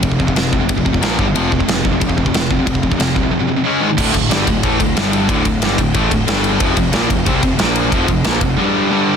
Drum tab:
CC |----------------|----------------|----------------|x---------------|
RD |b---b---b---b---|b---b---b---b---|b---b-----------|--x-x-x-x-x-x-x-|
SD |----o-------o---|----o-------o---|----o-----------|----o-------o---|
BD |oooo--o-oooo--o-|--oo--o-oooo--o-|oooo--o---------|o-o---o-o-o-----|

CC |----------------|----------------|----------------|
RD |x-x-x-x-x-x-x-x-|x-x-x-x-x-x-x-x-|x-x-x-x---------|
SD |----o-------o---|----o-------o---|----o-----------|
BD |o-o---o-o-o-----|o-o---o-o-o-----|o-o---o---------|